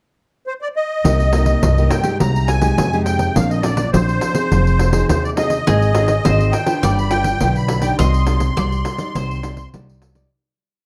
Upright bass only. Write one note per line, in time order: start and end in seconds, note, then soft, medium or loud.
1.04 1.54 C2 medium
1.62 1.87 C2 medium
2.20 2.69 C2 medium
2.78 3.27 F2 medium
3.36 3.85 A#1 medium
3.93 4.18 A#1 medium
4.52 5.01 F1 medium
5.09 5.59 D#2 medium
5.67 6.17 G#1 medium
6.25 6.50 G#1 medium
6.83 7.32 G1 medium
7.41 7.90 B1 medium
7.99 8.49 C2 medium
8.57 8.82 C2 medium
9.15 9.65 C2 medium
9.73 10.23 C2 medium